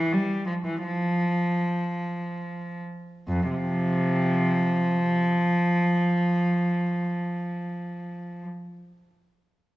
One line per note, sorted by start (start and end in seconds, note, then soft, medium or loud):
0.00 0.12 E3 medium
0.12 0.48 G3 medium
0.46 0.54 F3 medium
0.65 0.84 E3 medium
0.83 2.80 F3 medium
3.28 3.50 F2 medium
3.51 5.17 C3 soft
3.51 8.45 F3 medium